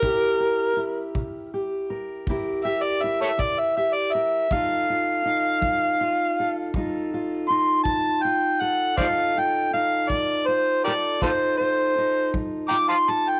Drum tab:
BD |o--o--o--o--|o--o--o--o--|o--o--o--o--|